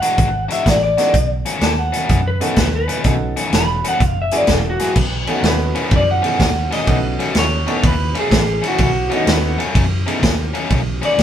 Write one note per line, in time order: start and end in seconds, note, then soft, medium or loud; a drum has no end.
0.00 0.28 E3 medium
0.00 0.28 G#3 medium
0.00 0.28 D4 medium
0.00 0.27 F#4 medium
0.00 0.49 F#5 medium
0.00 closed hi-hat medium
0.18 0.47 G#1 medium
0.18 kick loud
0.18 closed hi-hat medium
0.49 0.75 E3 medium
0.49 0.75 G#3 medium
0.49 0.75 D4 medium
0.49 0.75 F#4 medium
0.49 0.67 E5 medium
0.49 closed hi-hat medium
0.66 0.95 A1 medium
0.66 0.82 D5 medium
0.66 kick medium
0.66 snare loud
0.66 closed hi-hat medium
0.83 1.29 D5 medium
0.97 1.14 E3 medium
0.97 1.14 G#3 medium
0.97 1.12 B3 medium
0.97 1.12 C#4 medium
0.97 1.14 D4 medium
0.97 1.12 D#4 medium
0.97 1.14 F#4 medium
0.97 1.13 F#4 medium
0.97 1.13 A4 medium
0.97 snare soft
0.97 closed hi-hat medium
1.14 1.43 B1 medium
1.14 kick loud
1.14 closed hi-hat medium
1.45 1.72 B2 medium
1.45 1.71 D#3 medium
1.45 1.71 A3 medium
1.45 1.71 C#4 loud
1.45 closed hi-hat medium
1.61 1.91 D#2 medium
1.61 1.79 A5 medium
1.61 snare loud
1.61 closed hi-hat medium
1.79 2.24 F#5 medium
1.92 2.19 B2 medium
1.92 2.19 D#3 medium
1.92 2.19 A3 medium
1.92 2.18 C#4 medium
1.92 closed hi-hat medium
2.09 2.39 F#2 medium
2.09 kick loud
2.09 closed hi-hat medium
2.28 2.44 B4 medium
2.40 2.67 B2 medium
2.40 2.67 D#3 medium
2.40 2.67 A3 medium
2.40 2.55 B3 medium
2.40 2.55 C#4 medium
2.40 2.67 C#4 medium
2.40 2.55 D#4 medium
2.40 2.55 F#4 medium
2.40 2.55 A4 medium
2.40 closed hi-hat medium
2.44 2.58 A4 medium
2.56 2.86 D#2 medium
2.56 2.74 B4 medium
2.56 kick medium
2.56 snare loud
2.56 closed hi-hat medium
2.75 3.00 B4 medium
2.88 3.15 B2 medium
2.88 3.15 D#3 medium
2.88 3.14 A3 medium
2.88 3.14 C#4 medium
2.88 closed hi-hat medium
3.04 3.34 B1 medium
3.04 3.78 B3 medium
3.04 3.78 C#4 medium
3.04 3.78 D#4 medium
3.04 3.78 F#4 medium
3.04 3.79 A4 medium
3.04 kick loud
3.04 closed hi-hat medium
3.37 3.62 B2 medium
3.37 3.62 D#3 medium
3.37 3.62 A3 medium
3.37 3.62 C#4 medium
3.37 closed hi-hat medium
3.52 3.82 E1 medium
3.52 3.85 B5 loud
3.52 snare loud
3.52 closed hi-hat medium
3.84 4.01 B2 medium
3.84 4.01 D#3 medium
3.84 4.01 A3 medium
3.84 4.00 C#4 medium
3.84 4.05 F#5 medium
3.84 closed hi-hat medium
4.00 4.29 F#1 medium
4.00 kick loud
4.00 closed hi-hat medium
4.05 4.18 F5 medium
4.22 4.35 E5 medium
4.31 4.59 F#3 medium
4.31 4.93 A#3 medium
4.31 4.59 A#3 medium
4.31 4.93 C#4 medium
4.31 4.93 E4 medium
4.31 4.58 E4 medium
4.31 4.93 F#4 medium
4.31 4.58 G#4 medium
4.31 4.93 G#4 medium
4.31 closed hi-hat medium
4.37 4.50 D5 medium
4.47 4.77 E1 medium
4.47 kick medium
4.47 snare loud
4.47 closed hi-hat medium
4.54 4.67 A4 medium
4.70 4.93 F#4 medium
4.79 4.97 F#3 medium
4.79 4.97 A#3 medium
4.79 4.96 E4 medium
4.79 4.96 G#4 medium
4.79 snare soft
4.79 closed hi-hat medium
4.96 5.25 B1 medium
4.96 kick loud
4.96 crash medium
5.27 5.54 B2 medium
5.27 5.54 D#3 medium
5.27 5.53 A3 medium
5.27 5.89 A3 medium
5.27 5.89 B3 medium
5.27 5.53 C#4 loud
5.27 5.89 C#4 medium
5.27 5.89 D#4 medium
5.27 5.89 F#4 medium
5.27 ride medium
5.43 5.72 D#2 medium
5.43 snare loud
5.43 ride medium
5.48 5.92 B4 medium
5.75 6.02 B2 medium
5.75 6.02 D#3 medium
5.75 6.01 A3 medium
5.75 6.01 C#4 medium
5.75 ride medium
5.91 6.21 F#2 medium
5.91 kick loud
5.91 ride medium
5.96 6.09 D5 medium
6.11 6.71 F#5 medium
6.22 6.49 B2 medium
6.22 6.49 D#3 medium
6.22 6.49 A3 medium
6.22 6.38 A3 medium
6.22 6.38 B3 medium
6.22 6.48 C#4 medium
6.22 6.38 C#4 medium
6.22 6.39 D#4 medium
6.22 6.39 G#4 medium
6.22 ride medium
6.39 6.69 D#2 medium
6.39 kick medium
6.39 snare loud
6.39 ride medium
6.71 6.97 B2 medium
6.71 6.97 D#3 medium
6.71 6.97 A3 medium
6.71 6.97 C#4 medium
6.71 6.98 D#5 medium
6.71 snare soft
6.71 ride medium
6.87 7.17 B1 medium
6.87 7.61 A3 medium
6.87 7.62 B3 medium
6.87 7.62 C#4 medium
6.87 7.62 D#4 medium
6.87 7.62 F#4 medium
6.87 kick loud
6.87 ride medium
7.19 7.45 B2 medium
7.19 7.45 D#3 medium
7.19 7.45 A3 medium
7.19 7.45 C#4 medium
7.19 ride medium
7.35 7.65 D#2 medium
7.35 7.84 C#5 medium
7.35 snare loud
7.35 ride medium
7.67 7.93 B2 medium
7.67 7.93 D#3 medium
7.67 7.82 A3 medium
7.67 7.93 A3 medium
7.67 7.82 B3 medium
7.67 7.93 C#4 medium
7.67 7.82 C#4 medium
7.67 7.82 D#4 medium
7.67 7.82 A4 medium
7.67 ride medium
7.83 8.13 D#2 medium
7.83 8.16 B4 medium
7.83 kick loud
7.83 ride medium
8.15 8.41 B2 medium
8.15 8.41 D#3 medium
8.15 8.41 A3 medium
8.15 8.40 C#4 medium
8.15 ride medium
8.19 8.64 G#4 medium
8.31 8.60 A1 medium
8.31 kick medium
8.31 snare loud
8.31 ride medium
8.62 8.89 B2 medium
8.62 8.89 D#3 medium
8.62 8.88 A3 medium
8.62 8.88 C#4 medium
8.62 ride medium
8.68 8.81 F#4 medium
8.78 9.08 B1 medium
8.78 kick loud
8.78 ride medium
8.83 9.12 F#4 medium
9.10 9.36 B2 medium
9.10 9.36 D#3 medium
9.10 9.36 A3 medium
9.10 9.72 A3 medium
9.10 9.72 B3 medium
9.10 9.36 C#4 loud
9.10 9.72 C#4 medium
9.10 9.73 D#4 medium
9.10 9.73 F#4 medium
9.10 ride medium
9.17 9.29 D#4 medium
9.27 9.56 D#2 medium
9.27 snare loud
9.27 ride medium
9.31 9.60 B3 loud
9.58 9.85 B2 medium
9.58 9.85 D#3 medium
9.58 9.84 A3 medium
9.58 9.84 C#4 medium
9.58 ride medium
9.75 10.04 F#2 loud
9.75 kick loud
9.75 ride medium
10.07 10.33 B2 medium
10.07 10.33 D#3 medium
10.07 10.32 A3 medium
10.07 10.21 A3 medium
10.07 10.21 B3 medium
10.07 10.32 C#4 medium
10.07 10.21 C#4 medium
10.07 10.21 D#4 medium
10.07 10.21 G#4 medium
10.07 ride medium
10.22 10.52 D#2 medium
10.22 kick medium
10.22 snare loud
10.22 ride medium
10.54 10.80 B2 medium
10.54 10.80 D#3 medium
10.54 10.80 A3 medium
10.54 10.80 C#4 medium
10.54 ride medium
10.70 11.00 B1 loud
10.70 kick loud
10.70 ride medium
11.02 11.23 B2 medium
11.02 11.23 D#3 medium
11.02 11.23 A3 medium
11.02 11.23 C#4 medium
11.02 11.19 D5 loud
11.02 ride medium
11.18 11.23 D#2 medium
11.18 snare loud
11.18 ride medium